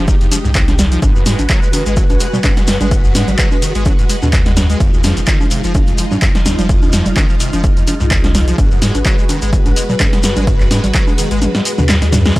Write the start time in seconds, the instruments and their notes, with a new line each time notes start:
Already playing: sub bass F1, string machine G#3 D#4 G4
0.08 acid bass D#3, kick, closed hi-hat, shekere
0.21 acid bass F2, closed hi-hat, shekere
0.31 acid bass F3, open hi-hat, high conga, shekere
0.45 sub bass C2, acid bass G#2, shekere
0.55 acid bass F2, kick, clap, closed hi-hat, shekere
0.68 acid bass F3, snare, closed hi-hat, high conga, shekere
0.79 acid bass D#2, snare, open hi-hat, low conga, shekere
0.92 acid bass F3, closed hi-hat, shekere
1.02 sub bass G#1, acid bass G#2, string machine F#4 B4, kick, closed hi-hat, high conga, shekere
1.15 acid bass F#2, shekere
1.26 sub bass G#2, acid bass G#3, snare, open hi-hat, shekere
1.39 sub bass G#1, acid bass G#2, closed hi-hat, high conga, shekere
1.49 acid bass F#3, kick, clap, closed hi-hat, shekere
1.63 acid bass G#3, shekere
1.73 acid bass D#3, open hi-hat, high conga, shekere
1.86 sub bass G#1, acid bass G#3, closed hi-hat, shekere
1.97 acid bass F#3, kick, closed hi-hat, shekere
2.10 sub bass G#1, acid bass G#2, closed hi-hat, high conga, shekere
2.20 acid bass G#3, open hi-hat, shekere
2.33 acid bass B2, low conga, shekere
2.44 acid bass G#2, kick, clap, closed hi-hat, high conga, shekere
2.57 acid bass G#3, snare, closed hi-hat, shekere
2.67 acid bass F#2, snare, open hi-hat, shekere
2.81 sub bass G#1, acid bass G#3, closed hi-hat, high conga, low conga, shekere
2.91 acid bass G#2, kick, closed hi-hat, shekere
3.04 acid bass F#2, shekere
3.15 sub bass G#2, acid bass G#3, snare, open hi-hat, high conga, shekere
3.28 sub bass G#1, acid bass G#2, closed hi-hat, low conga, shekere
3.39 acid bass F#3, kick, clap, closed hi-hat, shekere
3.51 acid bass G#3, high conga, shekere
3.62 acid bass D#3, open hi-hat, shekere
3.75 sub bass G#1, acid bass G#3, closed hi-hat, shekere
3.85 acid bass F#3, kick, closed hi-hat, high conga, shekere
3.99 acid bass G#2, closed hi-hat, shekere
4.09 acid bass G#3, open hi-hat, shekere
4.22 sub bass D#2, acid bass B2, high conga, shekere
4.33 acid bass G#2, kick, clap, closed hi-hat, shekere
4.46 acid bass G#3, snare, closed hi-hat, shekere
4.57 acid bass F#2, snare, open hi-hat, high conga, low conga, shekere
4.70 acid bass G#3, closed hi-hat, shekere
4.80 sub bass F1, acid bass F2, string machine D#4 F4, kick, closed hi-hat, shekere
4.93 acid bass D#2, shekere
5.04 sub bass F2, acid bass F3, snare, open hi-hat, high conga, shekere
5.17 sub bass F1, acid bass F2, closed hi-hat, shekere
5.27 acid bass D#3, kick, clap, closed hi-hat, shekere
5.41 acid bass F3, high conga, shekere
5.51 acid bass C3, open hi-hat, shekere
5.64 sub bass F1, acid bass F3, closed hi-hat, shekere
5.75 acid bass F2, kick, closed hi-hat, high conga, shekere
5.87 sub bass F1, acid bass F2, closed hi-hat, shekere
5.98 acid bass F3, open hi-hat, shekere
6.11 acid bass G#2, high conga, low conga, shekere
6.22 acid bass F2, kick, clap, closed hi-hat, shekere
6.35 acid bass F3, snare, closed hi-hat, shekere
6.46 acid bass D#2, snare, open hi-hat, high conga, shekere
6.59 sub bass F1, acid bass F3, closed hi-hat, low conga, shekere
6.69 acid bass F2, kick, closed hi-hat, shekere
6.82 acid bass D#2, high conga, shekere
6.93 sub bass F2, acid bass F3, snare, open hi-hat, shekere
7.06 sub bass F1, acid bass F2, closed hi-hat, low conga, shekere
7.17 acid bass D#3, kick, clap, closed hi-hat, high conga, shekere
7.29 acid bass F3, shekere
7.40 acid bass C3, open hi-hat, shekere
7.53 sub bass F1, acid bass F3, closed hi-hat, high conga, shekere
7.64 acid bass F2, kick, closed hi-hat, shekere
7.77 acid bass F2, closed hi-hat, shekere
7.87 acid bass F3, open hi-hat, high conga, shekere
8.00 sub bass C2, acid bass G#2, shekere
8.11 acid bass F2, kick, clap, closed hi-hat, shekere
8.24 acid bass F3, snare, closed hi-hat, high conga, shekere
8.35 acid bass D#2, snare, open hi-hat, low conga, shekere
8.48 acid bass F3, closed hi-hat, shekere
8.58 sub bass G#1, acid bass G#2, string machine G#3 F#4 B4, kick, closed hi-hat, high conga, shekere
8.71 acid bass F#2, shekere
8.82 sub bass G#2, acid bass G#3, snare, open hi-hat, shekere
8.95 sub bass G#1, acid bass G#2, closed hi-hat, high conga, shekere
9.05 acid bass F#3, kick, clap, closed hi-hat, shekere
9.18 acid bass G#3, shekere
9.29 acid bass D#3, open hi-hat, high conga, shekere
9.42 sub bass G#1, acid bass G#3, closed hi-hat, shekere
9.53 acid bass G#2, kick, closed hi-hat, shekere
9.66 sub bass G#1, acid bass G#2, closed hi-hat, high conga, shekere
9.76 acid bass G#3, open hi-hat, shekere
9.89 acid bass B2, low conga, shekere
10.00 acid bass G#2, kick, clap, closed hi-hat, high conga, shekere
10.13 acid bass G#3, snare, closed hi-hat, shekere
10.23 acid bass F#2, snare, open hi-hat, shekere
10.36 sub bass G#1, acid bass G#3, closed hi-hat, high conga, low conga, shekere
10.47 acid bass G#2, kick, closed hi-hat, shekere
10.60 acid bass F#2, clap, shekere
10.71 sub bass G#2, acid bass G#3, snare, open hi-hat, high conga, shekere
10.84 sub bass G#1, acid bass G#2, closed hi-hat, low conga, shekere
10.94 acid bass F#3, kick, clap, closed hi-hat, shekere
11.07 acid bass G#3, high conga, shekere
11.18 acid bass D#3, open hi-hat, shekere
11.31 sub bass G#1, acid bass G#3, closed hi-hat, shekere
11.42 acid bass G#2, closed hi-hat, high tom, high conga, shekere
11.55 acid bass G#2, snare, closed hi-hat, shekere
11.65 acid bass G#3, open hi-hat, shekere
11.78 sub bass D#2, acid bass B2, mid tom, high conga, shekere
11.89 acid bass G#2, snare, clap, closed hi-hat, shekere
12.02 sub bass D#2, acid bass G#3, snare, closed hi-hat, shekere
12.13 acid bass F#2, snare, mid tom, open hi-hat, high conga, low conga, shekere
12.25 acid bass G#3, snare, closed hi-hat, shekere
12.36 sub bass F1, acid bass F2, string machine D#4 F4, kick, closed hi-hat, crash, shekere